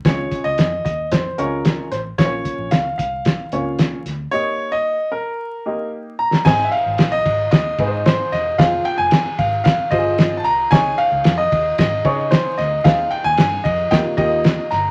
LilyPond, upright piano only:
\new Staff \with { instrumentName = "Upright piano" } { \time 4/4 \key aes \major \tempo 4 = 113 <aes des' f' des''>4 r4. <aes des' f' des''>4 r8 | <bes des' f' c'' des''>4 r4. <bes des' f' des''>4 r8 | <bes ees' g' ees''>4 r4. <bes ees' g' ees''>4 r8 | <ees' aes' c''>4 r4. <ees' aes' ces'' c''>4 r8 |
<f' aes' c''>4 r4. <f' g' aes' c''>4 r8 | <ees' aes' des''>4 r4. <ees' aes' des''>4 r8 | <ees' aes' c''>4 r4 <bes ees' f' g' ees''>8 <bes ees' f' g' ees''>4 r8 | }